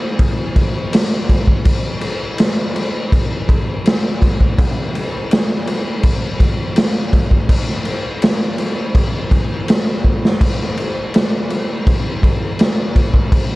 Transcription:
0.19 kick, crash
0.56 kick, crash
0.93 snare, crash
1.29 kick, crash
1.47 kick
1.65 kick, crash
2.01 crash
2.38 snare, crash
2.76 crash
3.12 kick, crash
3.49 kick, crash
3.86 snare, crash
4.22 kick, crash
4.41 kick
4.58 kick, crash
4.95 crash
5.31 snare, crash
5.67 crash
6.03 kick, crash
6.40 kick, crash
6.76 snare, crash
7.13 kick, crash
7.31 kick
7.49 kick, crash
7.69 snare
7.85 crash
8.22 snare, crash
8.58 crash
8.95 kick, crash
9.31 kick, crash
9.68 snare, crash
10.04 kick
10.25 snare
10.41 kick, crash
10.62 snare
10.77 crash
11.14 snare, crash
11.50 crash
11.87 kick, crash
12.23 kick, crash
12.59 snare, crash
12.96 kick, crash
13.14 kick
13.32 kick, crash
13.52 snare

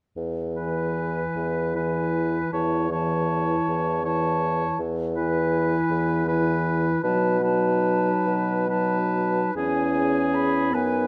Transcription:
0.17 E2
0.55 E3 E4 B4 G#5
1.36 E2
1.74 E3 E4 B4 G#5
2.51 E2 E3 E4 C#5 A5
2.91 E3 E4 C#5 A5
3.68 E2
4.04 E3 E4 C#5 A5
4.79 E2
5.15 E3 E4 B4 G#5
5.90 E2
6.26 E3 E4 B4 G#5
7.02 B2 F#3 D#4 B4 A5
7.41 F#3 D#4 B4 A5
8.26 B2
8.68 F#3 D#4 B4 A5
9.54 E2 C#4 E4 G#4 G#5
10.34 B5
10.72 F#2 B3 D#4 B4 G#5

